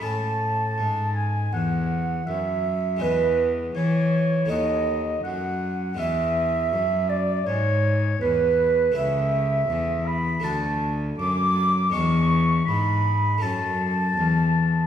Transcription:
<<
  \new Staff \with { instrumentName = "Flute" } { \time 4/4 \key a \major \tempo 4 = 81 a''4. gis''8 fis''4 e''4 | b'8 r8 cis''4 dis''4 fis''4 | e''4. d''8 cis''4 b'4 | e''4. b''8 a''8 r8 d'''4 |
cis'''4 b''4 a''2 | }
  \new Staff \with { instrumentName = "Oboe" } { \time 4/4 \key a \major a''4. gis''8 fis''4 e''4 | b'8 r8 cis''4 dis''4 fis''4 | e''4. d''8 cis''4 b'4 | e''4. b''8 a''8 r8 d'''4 |
cis'''4 b''4 a''2 | }
  \new Staff \with { instrumentName = "Harpsichord" } { \time 4/4 \key a \major <a cis' e'>1 | <gis b e'>2 <a b fis'>2 | <gis b e'>1 | <a e'>2 <a d' fis'>2 |
<gis d' e'>2 <a cis' a'>2 | }
  \new Staff \with { instrumentName = "Harpsichord" } { \clef bass \time 4/4 \key a \major a,4 gis,4 e,4 fis,4 | e,4 e4 dis,4 fis,4 | e,4 fis,4 gis,4 e,4 | cis,4 e,4 d,4 fis,4 |
e,4 gis,4 fis,4 e,4 | }
  \new Staff \with { instrumentName = "Cello" } { \clef bass \time 4/4 \key a \major a,4 gis,4 e,4 fis,4 | e,4 e4 dis,4 fis,4 | e,4 fis,4 gis,4 e,4 | cis,4 e,4 d,4 fis,4 |
e,4 gis,4 fis,4 e,4 | }
>>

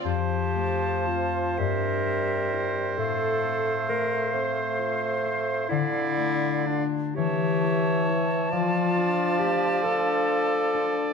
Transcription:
<<
  \new Staff \with { instrumentName = "Flute" } { \time 6/8 \key f \major \tempo 4. = 44 a''4. e''4. | f''2.~ | f''4 r8 a''4.~ | a''2. | }
  \new Staff \with { instrumentName = "Oboe" } { \time 6/8 \key f \major c''2.~ | c''2. | d''4 r8 cis''4. | d''2. | }
  \new Staff \with { instrumentName = "Clarinet" } { \time 6/8 \key f \major g'4 f'8 bes'4. | a'4 bes'8 c''4. | e'4 d'8 g'4 r8 | f'4 g'8 a'4. | }
  \new Staff \with { instrumentName = "Harp" } { \time 6/8 \key f \major << { <a f'>4. r4. | r2. | r2. | r2. | } \\ { f,8 a8 <c' f'>8 g,8 c'8 <e' c''>8 | a,8 c'8 a8 c'8 f'8 c'8 | d8 a8 <f' d''>8 e8 e'8 <e' cis''>8 | f8 d'8 a4 d''8 d'8 | } >> }
  \new Staff \with { instrumentName = "Bassoon" } { \clef bass \time 6/8 \key f \major f4. g4. | a2. | d4 r8 e4. | f2. | }
>>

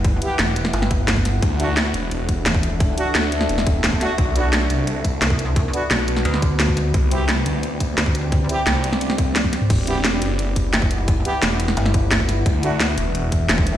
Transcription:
<<
  \new Staff \with { instrumentName = "Ambient pad" } { \time 4/4 \key e \minor \tempo 4 = 174 <e' b' fis''>1 | <d' a' e''>1~ | <d' a' e''>1 | <b fis' b'>1~ |
<b fis' b'>1 | <c' g' d''>1~ | <c' g' d''>1 | <e' b' fis''>1~ |
<e' b' fis''>1 | <d' a' e''>1 | }
  \new Staff \with { instrumentName = "Brass ensemble" } { \time 4/4 \key e \minor r8 <b e' g'>8 r2. | r8 <a d' fis'>8 r2. | r8 <a d' fis'>8 r2 r8 <a d' fis'>8 | r8 <b d' fis'>8 r2. |
r8 <b d' fis'>8 r2. | r8 <c' e' g'>8 r2. | r8 <c' e' g'>8 r2. | r8 <b e' g'>8 r2. |
r8 <b e' g'>8 r2. | r8 <a d' fis'>8 r2. | }
  \new Staff \with { instrumentName = "Detuned saw bass" } { \clef bass \time 4/4 \key e \minor r4 e,,4 r2 | d,4. e,,4. r4 | r4 d,4 e,,4. r8 | b,,4. c,4. r4 |
r4 b,,4 r2 | c,4. d,4. r4 | r4 c,4 c,4 r4 | e,,4. fis,,4. r4 |
r4 e,,4 r2 | d,4. e,,4. r4 | }
  \new Staff \with { instrumentName = "Wobble bass" } { \clef bass \time 4/4 \key e \minor fis,,8 r4. g,,2 | r2. e,,4~ | e,,8 r2. r8 | r2. c,4~ |
c,8 r4. d,2 | r2. d,4~ | d,8 r2. r8 | r2. fis,,4~ |
fis,,8 r4. g,,2 | r2. e,,4 | }
  \new DrumStaff \with { instrumentName = "Drums" } \drummode { \time 4/4 <hh bd>8 hh8 <hh sn>8 hh16 sn16 hh16 sn16 <hh bd>8 <hh sn>16 bd16 <hh sn>8 | <hh bd>8 hh8 <hh sn>8 hh8 hh8 <hh bd>8 <hh sn>16 bd16 hh8 | <hh bd>8 hh8 <hh sn>8 hh16 sn16 hh16 sn16 <hh bd>8 <hh sn>16 bd16 <hh sn>8 | <hh bd>8 hh8 <hh sn>8 hh8 hh8 <hh bd>8 <hh sn>16 bd16 hh8 |
<hh bd>8 hh8 <hh sn>8 hh16 sn16 hh16 sn16 <hh bd>8 <hh sn>16 bd16 <hh sn>8 | <hh bd>8 hh8 <hh sn>8 hh8 hh8 <hh bd>8 <hh sn>16 bd16 hh8 | <hh bd>8 hh8 <hh sn>8 hh16 sn16 hh16 sn16 <hh bd>8 <hh sn tommh>16 <bd tommh>16 <hh sn>16 toml16 | <cymc hh bd>8 hh8 <hh sn>8 hh8 hh8 <hh bd>8 <hh sn>16 bd16 hh8 |
<hh bd>8 hh8 <hh sn>8 hh16 sn16 hh16 sn16 <hh bd>8 <hh sn>16 bd16 <hh sn>8 | <hh bd>8 hh8 <hh sn>8 hh8 hh8 <hh bd>8 <hh sn>16 bd16 hh8 | }
>>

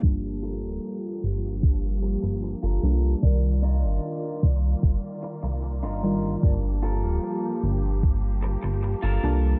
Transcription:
<<
  \new Staff \with { instrumentName = "Clean electric guitar" } { \time 4/4 \key g \minor \tempo 4 = 75 r8 <f' a' bes'>4 r4. r16 <f' a' bes'>8. | r8 <d' ees' f' bes'>4 r4. r16 <d' ees' f' bes'>8. | r8 <f' a' bes'>4 r4. r16 <f' a' bes'>8. | }
  \new Staff \with { instrumentName = "FM electric piano" } { \time 4/4 \key g \minor <g bes d' f'>2.~ <g bes d' f'>8 <g bes d' f' a''>8 | <ees g f' bes' d''>2.~ <ees g f' bes' d''>8 <ees g f' bes' d''>8 | <g bes d' f' a''>2.~ <g bes d' f' a''>8 <g bes d' f' a''>8 | }
  \new Staff \with { instrumentName = "String section" } { \time 4/4 \key g \minor <f bes g'>1 | <ees f' d''>1 | <f g'>1 | }
  \new Staff \with { instrumentName = "Analog synth bass" } { \clef bass \time 4/4 \key g \minor g,,8. d,,16 r8 g,,4~ g,,16 g,,8 g,,16 c,8 | c,8. g,,16 r8 c,8 g,,16 r8 c,8 g,,8. | g,,8. d,,16 r8 g,,4~ g,,16 g,,8 g,,16 c,8 | }
  \new DrumStaff \with { instrumentName = "Drums" } \drummode { \time 4/4 bd8 hh8 hh8 hh8 <hh bd>8 hh8 hh8 hh8 | <hh bd>8 hh8 hh8 <hh bd>8 <hh bd>8 hh8 hh8 hh8 | <hh bd>8 hh8 hh8 hh8 <hh bd>8 hh8 hh8 hh8 | }
>>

